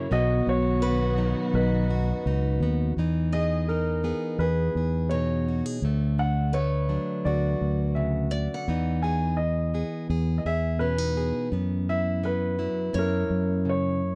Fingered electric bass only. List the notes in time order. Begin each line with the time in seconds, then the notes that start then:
0.11 B1
0.47 B1
1.54 B1
2.26 C#2
2.60 D#2
2.97 E2
4.39 E2
4.75 E2
5.82 D2
7.25 D2
7.61 D2
8.68 E2
10.10 E2
10.45 E2
11.52 F#2
12.94 F#2
13.30 F#2